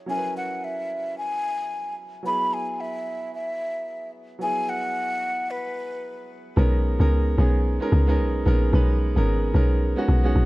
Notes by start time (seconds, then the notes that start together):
0.06 F#3 C#4 E4 G#5
0.11 A#4
0.17 B4
0.37 F#5
0.64 E5
1.18 G#5
2.23 F#3 B3 E4 B5
2.27 G#4
2.53 G#5
2.80 E5
3.34 E5
4.39 F#3 B3 E4 G#5
4.43 G#4
4.69 F#5
5.50 B4
6.56 B1 G#3 B3 C#4 D#4 A#4
6.99 C#2 G#3 B3 C#4 D#4 A#4
7.37 B1 G#3 B3 C#4 D#4 G#4
7.80 G#3 B3 C#4 D#4 A#4
7.92 C#2
8.07 G#3 B3 C#4 D#4 A#4
8.19 B1
8.45 A#1 G#3 B3 C#4 D#4 A#4
8.72 B1 G#3 B3 C#4 D#4 B4
9.15 G#1 G#3 B3 C#4 D#4 A#4
9.53 B1 G#3 B3 C#4 D#4 A#4
9.96 G#3 B3 C#4 D#4 F#4
10.09 B1
10.23 G#3 B3 C#4 D#4 F#4
10.36 A#1